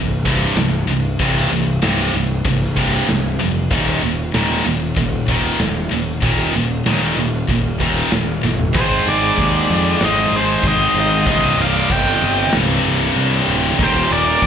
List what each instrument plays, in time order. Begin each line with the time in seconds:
Already playing: picked electric bass C1, distorted electric guitar C2 G2
0.25 distorted electric guitar C2 G2 C3, kick, ride
0.56 picked electric bass C1, distorted electric guitar C2 G2, snare, ride
0.87 picked electric bass C1, distorted electric guitar C2 G2, ride
1.19 picked electric bass C1, distorted electric guitar C2 G2 C3, kick, ride
1.50 picked electric bass C1, distorted electric guitar C2 G2, ride
1.82 picked electric bass C1, distorted electric guitar C2 G2 C3, snare, ride
2.13 picked electric bass C1, distorted electric guitar C2 G2, ride
2.44 picked electric bass C1, distorted electric guitar C2 G2, kick, ride
2.62 snare
2.77 distorted electric guitar C2 G2 C3, kick, ride
3.07 picked electric bass C1, distorted electric guitar C2 G2, snare, ride
3.39 picked electric bass F1, distorted electric guitar C2 G2, ride
3.71 picked electric bass D#1, distorted electric guitar D#2 A#2 D#3, kick, ride
4.02 picked electric bass D#1, distorted electric guitar D#2 A#2, ride
4.34 picked electric bass D#1, distorted electric guitar D#2 A#2 D#3, snare, ride
4.65 picked electric bass D#1, distorted electric guitar D#2 A#2, snare, ride
4.96 picked electric bass D#1, distorted electric guitar D#2 A#2, kick, ride
5.28 distorted electric guitar D#2 A#2 D#3, kick, ride
5.59 picked electric bass D#1, distorted electric guitar D#2 A#2, snare, ride
5.91 picked electric bass D#1, distorted electric guitar D#2 A#2, ride
6.22 picked electric bass D#1, distorted electric guitar D#2 A#2 D#3, kick, ride
6.54 picked electric bass D#1, distorted electric guitar D#2 A#2, ride
6.86 picked electric bass D#1, distorted electric guitar D#2 A#2 D#3, snare, ride
7.17 picked electric bass D#1, distorted electric guitar D#2 A#2, ride
7.48 picked electric bass D#1, distorted electric guitar D#2 A#2, kick, ride
7.80 distorted electric guitar D#2 A#2 D#3, kick, ride
8.12 picked electric bass D#1, distorted electric guitar D#2 A#2, snare, ride
8.43 picked electric bass G1, distorted electric guitar D#2 A#2, snare
8.59 floor tom
8.74 picked electric bass G#1, distorted electric guitar G#2 D#3 G#3, lead electric guitar G#4 C5, kick, crash
9.07 picked electric bass G#1, lead electric guitar G#4 D5, snare, crash
9.38 picked electric bass D#2, kick, crash
9.70 picked electric bass F2, crash
10.00 picked electric bass G#1, distorted electric guitar G#2 D#3 G#3, lead electric guitar D#5, snare, crash
10.05 lead electric guitar C5
10.32 picked electric bass G#1, crash
10.37 lead electric guitar G#4 C5
10.63 picked electric bass G#1, kick, crash
10.68 lead electric guitar C5 D#5
10.94 picked electric bass G#1, crash
10.99 lead electric guitar C5 D#5
11.26 picked electric bass C1, distorted electric guitar C2 G2 C3, kick, crash
11.31 lead electric guitar C5 D#5
11.58 picked electric bass C1, lead electric guitar D5 F5, crash
11.90 picked electric bass G1, lead electric guitar D#5 G5, kick, crash
12.22 picked electric bass G1, crash
12.52 picked electric bass C1, distorted electric guitar C2 G2 C3, snare, crash
12.85 picked electric bass C1, crash
13.16 picked electric bass C2, crash
13.47 picked electric bass D1, crash
13.78 picked electric bass D#1, distorted electric guitar D#2 A#2 D#3, kick, crash
13.83 lead electric guitar G4 C5
14.11 picked electric bass D#1, lead electric guitar D5, crash
14.15 lead electric guitar A#4
14.42 picked electric bass A#1, kick, crash